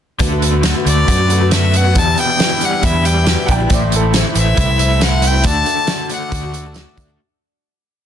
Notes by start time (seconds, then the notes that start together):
0.19 D2 D3 A3 B3 D4 F#4 A4 B4, kick, closed hi-hat
0.30 A3 B3 F#4
0.42 A3, closed hi-hat
0.63 D3 A3 B3 F#4, snare, closed hi-hat
0.75 A3 B3 F#4
0.85 D2 D3 A3 B3 F#4 D5, closed hi-hat
1.08 F#2 F#4, kick, closed hi-hat
1.18 A3 B3 F#4
1.30 D3 A3 B3 F#4, closed hi-hat
1.41 A3 B3 F#4
1.51 D3 A3 B3 F#4 E5, snare, closed hi-hat
1.74 D3 A3 B3 F#4 F#5, closed hi-hat
1.85 A3 B3 F#4
1.95 E2 B2 E3 G3 D4 E4 G4 B4 A5, kick, closed hi-hat
2.07 E3 G3 D4 E4
2.17 B2 G5, closed hi-hat
2.39 E2 B2 E3 G3 D4 E4, snare, closed hi-hat
2.50 E3 G3 D4 E4
2.61 E3 G3 D4 E4 F#5, closed hi-hat
2.83 E2 E4 E5, kick, closed hi-hat
2.94 E3 G3 D4 E4
3.05 E3 G3 D4 E4 G5, closed hi-hat
3.26 E2 B2 E3 G3 D4 E4, snare, closed hi-hat
3.46 A#1 E3 G3 D4 F#5, kick, closed hi-hat
3.51 E4 G5
3.59 E3 G3 D4 E4
3.69 A1 A2 E3 A3 C4 E4 A4 C5, kick, closed hi-hat, tambourine
3.74 D5
3.80 A3 C4 E4
3.92 E3 A4, closed hi-hat, tambourine
4.13 A2 E3 A3 C4 E4, snare, closed hi-hat, tambourine
4.24 A3 C4 E4
4.34 A1 E3 A3 C4 E4 E5, closed hi-hat
4.57 C2 E4, kick, closed hi-hat
4.68 A3 C4 E4
4.79 E3 A3 C4 E4, closed hi-hat, tambourine
4.91 A3 C4 E4
5.01 A2 E3 A3 C4 E4 F#5, snare, closed hi-hat, tambourine
5.22 E3 A3 C4 E4, closed hi-hat, tambourine
5.27 G5
5.34 A3 C4 E4
5.44 D2 D3 A3 D4 F#4 A4 D5 A5, kick, closed hi-hat, tambourine
5.66 A3, closed hi-hat, tambourine
5.87 D3 A3 D4 F#4, snare, closed hi-hat, tambourine
5.98 A3 D4 F#4
6.09 D3 A3 D4 F#4 F#5, closed hi-hat, tambourine
6.32 D2 F#4, kick, closed hi-hat, tambourine
6.44 A3 D4 F#4
6.54 D3 A3 D4 F#4, closed hi-hat, tambourine
6.65 A3 D4 F#4
6.74 D3 A3 D4, snare, closed hi-hat, tambourine
6.78 F#4
6.97 D2 D3 D4, kick, closed hi-hat, tambourine
7.08 A3 D4 F#4